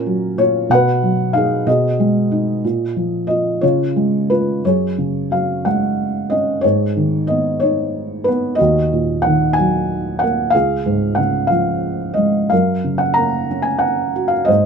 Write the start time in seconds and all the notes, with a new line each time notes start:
Already playing: A#2 C#4 A#4
0.06 F#3
0.38 A#2 F4 C#5
0.70 B2 F#5
0.74 B4
1.03 F#3
1.33 D#4 G#4 F5
1.67 B2 G#4 D#5
2.00 G#3
2.31 D#4
2.64 A#2
2.96 F3
3.27 F4 D#5
3.61 C#3 F4 C#5
3.96 G#3
4.30 F4 B4
4.64 F#2 G#4 C#5
4.98 C#3
5.31 F#3 F5
5.65 G#3 F#5
6.30 C#4 D#5
6.61 G#2 G#4 C#5
6.97 D#3
7.27 B3 D#5
7.60 D#4 C#5
8.24 B4
8.28 B3
8.55 F#4 D#5
8.61 D#2
8.93 A#2
9.22 F#5
9.26 D#3
9.53 G#5
9.59 F#3
10.19 F#5
10.23 A#3
10.50 C#2 F5
10.55 G#4
10.86 G#2
11.15 C#3 F#5
11.47 F3 F5
12.14 G#3 D#5
12.50 F#2 A#4 F5
12.84 C#3
12.98 F#5
13.14 A#3 A#5
13.51 C#4
13.62 G#5
13.79 F#5
14.16 F#4
14.28 F5
14.45 G#2 C5 D#5